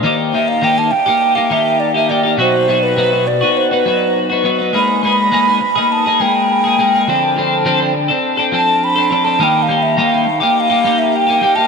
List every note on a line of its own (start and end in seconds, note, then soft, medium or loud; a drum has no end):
0.03 0.32 D#3 medium
0.03 0.33 A#3 medium
0.03 0.35 D#4 medium
0.03 0.35 G4 medium
0.33 0.60 D#3 medium
0.33 0.61 A#3 medium
0.33 0.63 D#4 medium
0.33 0.63 G4 medium
0.33 0.50 E5 medium
0.48 0.66 F5 loud
0.62 0.91 D#3 medium
0.62 0.78 A#3 medium
0.62 0.77 D#4 loud
0.62 0.76 G4 loud
0.62 0.80 G5 loud
0.77 0.91 A#3 medium
0.77 0.92 D#4 medium
0.77 0.92 G4 medium
0.77 0.93 A5 loud
0.91 1.37 G5 loud
0.91 muted clean electric guitar stroke soft
1.06 1.37 A#3 medium
1.06 1.36 D#4 medium
1.06 1.34 G4 medium
1.35 1.50 A#3 medium
1.35 1.52 D#4 medium
1.35 1.52 G4 medium
1.35 1.53 F5 medium
1.50 2.07 D#3 medium
1.50 1.96 A#3 medium
1.50 1.95 D#4 medium
1.50 1.93 G4 medium
1.50 1.81 E5 loud
1.80 1.95 D5 medium
1.94 2.09 A#3 medium
1.94 2.10 D#4 medium
1.94 2.10 G4 medium
1.94 2.11 E5 medium
2.09 2.37 D#3 medium
2.09 2.25 A#3 medium
2.09 2.25 D#4 medium
2.09 2.22 G4 medium
2.09 2.39 D5 medium
2.23 2.38 A#3 medium
2.23 2.39 D#4 medium
2.23 2.37 G4 medium
2.37 2.95 B2 medium
2.37 2.67 F#3 medium
2.37 2.68 B3 medium
2.37 2.69 D#4 medium
2.37 2.69 F#4 medium
2.37 2.85 C5 medium
2.68 2.96 F#3 medium
2.68 2.97 B3 medium
2.68 2.98 D#4 medium
2.68 2.98 F#4 medium
2.83 3.29 B4 medium
2.96 3.42 B2 medium
2.96 3.25 F#3 loud
2.96 3.13 B3 loud
2.96 3.13 D#4 loud
2.96 3.11 F#4 loud
3.12 3.26 B3 medium
3.12 3.27 D#4 medium
3.12 3.26 F#4 medium
3.27 3.58 D5 medium
3.27 muted clean electric guitar stroke soft
3.41 3.72 B3 medium
3.41 3.71 D#4 medium
3.41 3.70 F#4 medium
3.57 3.71 C5 medium
3.71 3.85 B3 medium
3.71 3.86 D#4 medium
3.71 3.87 F#4 medium
3.71 4.27 B4 medium
3.85 4.42 F#3 medium
3.85 4.32 B3 medium
3.85 4.30 D#4 medium
3.85 4.28 F#4 medium
4.30 4.44 B3 medium
4.30 4.44 D#4 medium
4.30 4.45 F#4 medium
4.44 4.72 F#3 medium
4.44 4.60 B3 medium
4.44 4.59 D#4 medium
4.44 4.57 F#4 medium
4.59 4.74 B3 medium
4.59 4.73 D#4 medium
4.59 4.72 F#4 medium
4.73 5.02 G#3 medium
4.73 5.03 A#3 medium
4.73 5.03 D#4 medium
4.73 5.04 G#4 medium
4.73 5.02 B5 loud
5.03 5.31 G#3 medium
5.03 5.32 A#3 medium
5.03 5.33 D#4 medium
5.03 5.33 G#4 medium
5.03 5.94 B5 loud
5.32 5.60 G#3 loud
5.32 5.48 A#3 loud
5.32 5.47 D#4 loud
5.32 5.46 G#4 loud
5.47 5.60 A#3 medium
5.47 5.60 D#4 medium
5.47 5.61 G#4 medium
5.61 muted clean electric guitar stroke soft
5.76 6.07 A#3 medium
5.76 6.06 D#4 medium
5.76 6.05 G#4 medium
5.92 6.23 A5 medium
6.06 6.20 A#3 medium
6.06 6.20 D#4 medium
6.06 6.21 G#4 medium
6.20 6.77 G#3 medium
6.20 6.66 A#3 medium
6.20 6.64 D#4 medium
6.20 6.63 G#4 medium
6.20 7.67 G5 loud
6.64 6.78 A#3 medium
6.64 6.79 D#4 medium
6.64 6.80 G#4 medium
6.79 7.06 G#3 medium
6.79 6.95 A#3 medium
6.79 6.94 D#4 medium
6.79 6.92 G#4 medium
6.94 7.08 A#3 medium
6.94 7.07 D#4 medium
6.94 7.06 G#4 medium
7.07 7.64 D3 medium
7.07 7.35 F3 medium
7.07 7.37 C4 medium
7.07 7.37 D4 loud
7.07 7.38 A4 medium
7.36 7.65 F3 medium
7.36 7.65 C4 medium
7.36 7.66 D4 medium
7.36 7.66 A4 medium
7.65 8.09 D3 loud
7.65 7.93 F3 medium
7.65 7.81 C4 loud
7.65 7.80 D4 loud
7.65 7.78 A4 loud
7.80 7.93 C4 medium
7.80 7.94 D4 medium
7.80 7.94 A4 medium
7.94 muted clean electric guitar stroke soft
8.08 8.39 C4 medium
8.08 8.38 D4 medium
8.08 8.36 A4 medium
8.37 8.52 C4 medium
8.37 8.53 D4 medium
8.37 8.53 A4 medium
8.52 9.09 F3 medium
8.52 8.97 C4 medium
8.52 8.96 D4 medium
8.52 8.94 A4 medium
8.52 8.85 A5 loud
8.84 9.26 B5 loud
8.96 9.10 C4 medium
8.96 9.11 D4 medium
8.96 9.11 A4 medium
9.10 9.38 F3 medium
9.10 9.26 C4 medium
9.10 9.25 D4 medium
9.10 9.23 A4 medium
9.25 9.39 C4 medium
9.25 9.39 D4 medium
9.25 9.38 A4 medium
9.25 9.45 A5 medium
9.39 9.96 D#3 medium
9.39 9.67 G3 medium
9.39 9.68 A#3 medium
9.39 9.69 D#4 medium
9.39 9.70 G4 medium
9.43 9.64 G5 medium
9.63 9.84 F5 medium
9.68 9.97 G3 medium
9.68 9.97 A#3 medium
9.68 9.98 D#4 medium
9.68 9.98 G4 medium
9.82 10.00 E5 medium
9.97 10.41 D#3 medium
9.97 10.26 G3 medium
9.97 10.13 A#3 loud
9.97 10.12 D#4 loud
9.97 10.10 G4 loud
9.97 10.42 F5 medium
10.12 10.26 A#3 medium
10.12 10.27 D#4 medium
10.12 10.27 G4 medium
10.27 muted clean electric guitar stroke soft
10.40 10.71 A#3 medium
10.40 10.70 D#4 medium
10.40 10.69 G4 medium
10.40 10.62 G5 medium
10.60 11.00 F5 medium
10.70 10.84 A#3 medium
10.70 10.86 D#4 medium
10.70 10.86 G4 medium
10.84 11.40 G3 medium
10.84 11.29 A#3 medium
10.84 11.28 D#4 medium
10.84 11.26 G4 medium
10.98 11.18 E5 medium
11.16 11.57 G5 medium
11.27 11.41 A#3 medium
11.27 11.43 D#4 medium
11.27 11.43 G4 medium
11.41 11.67 G3 medium
11.41 11.57 A#3 medium
11.41 11.56 D#4 medium
11.41 11.54 G4 medium
11.56 11.67 A#3 medium
11.56 11.67 D#4 medium
11.56 11.67 G4 medium
11.56 11.67 A5 medium